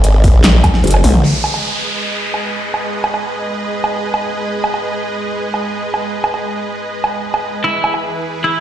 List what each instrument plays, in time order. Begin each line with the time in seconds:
0.04 wobble bass G#1, closed hi-hat
0.24 kick, open hi-hat
0.34 wobble bass A#1
0.44 snare, clap, closed hi-hat
0.64 kick, closed hi-hat, low woodblock
0.74 snare
0.84 wobble bass F#1, closed hi-hat
0.87 closed hi-hat
0.91 closed hi-hat, low woodblock
1.04 wobble bass B1, open hi-hat, high tom
1.14 mid tom
1.24 supersaw synth G#3 G#4 B4 D#5, crash, downlifter
1.44 low woodblock
1.54 low woodblock
2.34 low woodblock
2.74 low woodblock
3.04 low woodblock
3.14 low woodblock
3.84 low woodblock
4.14 low woodblock
4.64 low woodblock
4.74 low woodblock
5.54 low woodblock
5.94 low woodblock
6.24 low woodblock
6.34 low woodblock
7.04 low woodblock
7.34 low woodblock
7.64 supersaw synth E3 E4 G#4 B4, clean electric guitar E4
7.84 low woodblock
7.94 low woodblock
8.44 clean electric guitar E4